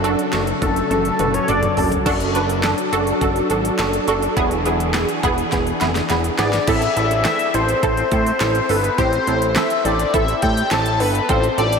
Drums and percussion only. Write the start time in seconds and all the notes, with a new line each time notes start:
0.04 closed hi-hat
0.19 closed hi-hat
0.33 snare, closed hi-hat
0.47 closed hi-hat
0.62 kick, closed hi-hat
0.76 closed hi-hat
0.91 closed hi-hat, high tom
1.05 closed hi-hat
1.19 closed hi-hat, mid tom
1.34 closed hi-hat
1.48 closed hi-hat, mid tom
1.63 closed hi-hat, mid tom
1.77 floor tom, open hi-hat
1.92 closed hi-hat, floor tom
2.06 kick, closed hi-hat, crash
2.20 closed hi-hat
2.35 closed hi-hat
2.50 closed hi-hat
2.63 snare, clap, closed hi-hat
2.78 closed hi-hat
2.93 closed hi-hat
3.07 closed hi-hat
3.21 kick, closed hi-hat
3.36 closed hi-hat
3.50 closed hi-hat
3.65 closed hi-hat
3.79 snare, clap, closed hi-hat
3.93 closed hi-hat
4.08 closed hi-hat
4.22 closed hi-hat
4.37 kick, closed hi-hat
4.51 closed hi-hat
4.66 closed hi-hat
4.80 closed hi-hat
4.94 snare, clap, closed hi-hat
5.08 closed hi-hat
5.23 kick, closed hi-hat
5.38 closed hi-hat
5.52 kick, snare, closed hi-hat
5.67 closed hi-hat
5.81 snare, closed hi-hat
5.95 snare, closed hi-hat
6.10 snare, closed hi-hat
6.24 closed hi-hat
6.39 snare, closed hi-hat
6.53 snare, closed hi-hat
6.67 kick, closed hi-hat, crash
6.82 closed hi-hat
6.97 closed hi-hat
7.11 closed hi-hat
7.25 snare, clap, closed hi-hat
7.39 closed hi-hat
7.54 closed hi-hat
7.68 closed hi-hat
7.83 kick, closed hi-hat
7.97 closed hi-hat
8.11 kick, closed hi-hat
8.26 closed hi-hat
8.40 snare, clap, closed hi-hat
8.55 closed hi-hat
8.69 open hi-hat
8.84 closed hi-hat
8.98 kick, closed hi-hat
9.13 closed hi-hat
9.27 closed hi-hat
9.42 closed hi-hat
9.56 snare, clap, closed hi-hat
9.70 closed hi-hat
9.85 closed hi-hat
9.99 closed hi-hat
10.14 kick, closed hi-hat
10.28 closed hi-hat
10.42 kick, closed hi-hat
10.57 closed hi-hat
10.71 snare, clap, closed hi-hat
10.86 closed hi-hat
11.00 open hi-hat
11.15 closed hi-hat
11.29 kick, closed hi-hat
11.43 closed hi-hat
11.58 closed hi-hat
11.73 closed hi-hat